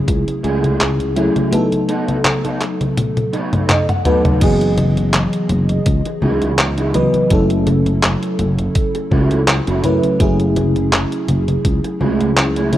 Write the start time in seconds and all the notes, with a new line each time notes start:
Already playing: F#3 A3 C#4 E4 G#4
0.07 C#2, muted clean electric guitar stroke, kick, closed hi-hat, high conga
0.28 closed hi-hat, high conga
0.43 C#2 A3 E4 G#4, closed hi-hat
0.64 closed hi-hat, high conga
0.80 clap, closed hi-hat, high conga
1.00 closed hi-hat, high conga
1.16 F#3 A3 C#4 E4 G#4, closed hi-hat
1.36 closed hi-hat, high conga
1.51 F#3 A3 B3 D#4 A4, closed hi-hat, high conga
1.72 closed hi-hat, high conga
1.88 B3 D#4 A4, closed hi-hat
2.08 closed hi-hat, high conga
2.25 clap, closed hi-hat, high conga
2.44 B3 D#4 A4, closed hi-hat, high conga
2.61 clap, closed hi-hat
2.81 muted clean electric guitar stroke, closed hi-hat, high conga
2.97 muted clean electric guitar stroke, closed hi-hat, high tom, high conga
3.17 closed hi-hat, high tom, high conga
3.33 B3 D#4 A4 C#5, closed hi-hat
3.53 closed hi-hat, mid tom, high conga
3.69 D#5, clap, closed hi-hat, mid tom, high conga
3.89 F#5, closed hi-hat, mid tom, high conga
4.05 F#3 A3 B3 D#4 A4 B4 A5, closed hi-hat, mid tom
4.25 closed hi-hat, mid tom, high conga
4.40 F#1 E3 F#3 B3 G#4 D#5, kick, closed hi-hat, crash, high conga
4.61 closed hi-hat
4.78 muted clean electric guitar stroke, closed hi-hat, high conga
4.97 muted clean electric guitar stroke, closed hi-hat, high conga
5.13 clap, closed hi-hat, high conga
5.33 closed hi-hat
5.49 F#1, closed hi-hat, high conga
5.69 closed hi-hat, high conga
5.86 C#2, kick, closed hi-hat, high conga
6.05 muted clean electric guitar stroke, closed hi-hat
6.22 C#2 D#4 E4 F#4 G#4, high conga
6.42 closed hi-hat, high conga
6.58 clap, closed hi-hat, high conga
6.78 D#4 E4 F#4 G#4, closed hi-hat
6.94 E3 F#3 B3 B4 D#5, closed hi-hat, high conga
7.14 muted clean electric guitar stroke, closed hi-hat, high conga
7.30 F#1 F#3 A3 C#4 E4 A4, kick, closed hi-hat, high conga
7.50 closed hi-hat
7.67 muted clean electric guitar stroke, closed hi-hat, high conga
7.86 muted clean electric guitar stroke, closed hi-hat, high conga
8.03 clap, closed hi-hat, high conga
8.23 closed hi-hat
8.39 F#1, closed hi-hat, high conga
8.59 closed hi-hat, high conga
8.75 kick, closed hi-hat, high conga
8.95 muted clean electric guitar stroke, closed hi-hat
9.11 C#2 C#4 E4 F#4 A4, kick, high conga
9.31 closed hi-hat, high conga
9.48 clap, closed hi-hat, high conga
9.67 F#1 C#4 E4 F#4 A4, closed hi-hat
9.84 F#2 F#3 A3 C#4 E4 B4, closed hi-hat, high conga
10.04 muted clean electric guitar stroke, closed hi-hat, high conga
10.19 F#1 F#3 A3 C#4 E4 G#4, kick, closed hi-hat, high conga
10.40 closed hi-hat
10.56 muted clean electric guitar stroke, closed hi-hat, high conga
10.76 muted clean electric guitar stroke, closed hi-hat, high conga
10.93 clap, closed hi-hat, high conga
11.12 closed hi-hat
11.28 F#1, closed hi-hat, high conga
11.48 closed hi-hat, high conga
11.65 C#2, kick, closed hi-hat, high conga
11.84 muted clean electric guitar stroke, closed hi-hat
12.01 C#2 A3 E4 F#4 G#4, high conga
12.21 closed hi-hat, high conga
12.37 clap, closed hi-hat, high conga
12.56 A3 E4 F#4 G#4, closed hi-hat
12.72 F#3 A3 C#4 E4, closed hi-hat, high conga